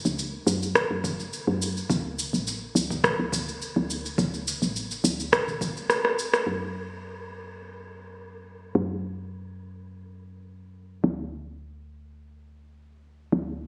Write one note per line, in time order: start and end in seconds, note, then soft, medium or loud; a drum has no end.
0.05 0.39 C#2 medium
0.05 shaker soft
0.19 shaker soft
0.47 0.81 F#2 loud
0.47 shaker medium
0.63 shaker soft
0.75 kick medium
0.75 cross-stick medium
0.75 shaker soft
0.90 1.24 F#2 medium
1.04 kick loud
1.04 shaker medium
1.20 shaker soft
1.33 shaker soft
1.47 1.82 F#2 medium
1.62 shaker medium
1.77 shaker soft
1.90 2.24 D2 loud
1.90 kick loud
1.90 shaker soft
2.19 shaker medium
2.33 2.67 A1 medium
2.33 shaker soft
2.47 shaker soft
2.75 3.10 D2 medium
2.75 shaker medium
2.91 kick medium
2.91 shaker soft
3.04 kick loud
3.04 cross-stick medium
3.04 shaker soft
3.19 3.53 D2 medium
3.32 kick medium
3.32 shaker medium
3.48 shaker soft
3.62 shaker soft
3.76 4.10 D2 medium
3.90 shaker medium
4.06 shaker soft
4.18 4.53 D2 loud
4.18 kick loud
4.18 shaker soft
4.34 shaker soft
4.47 shaker medium
4.62 4.96 A1 medium
4.62 shaker soft
4.76 shaker soft
4.91 shaker soft
5.04 5.39 D2 medium
5.04 shaker medium
5.20 shaker soft
5.32 kick medium
5.32 cross-stick medium
5.32 shaker soft
5.47 6.06 D1 loud
5.47 shaker soft
5.61 kick loud
5.61 shaker medium
5.77 shaker soft
5.90 cross-stick medium
5.90 shaker soft
6.05 6.39 A1 medium
6.05 cross-stick medium
6.19 shaker medium
6.34 cross-stick medium
6.34 shaker soft
6.47 8.73 F#2 medium
8.75 11.01 F#2 medium
11.04 13.30 D2 medium
13.32 13.67 D2 medium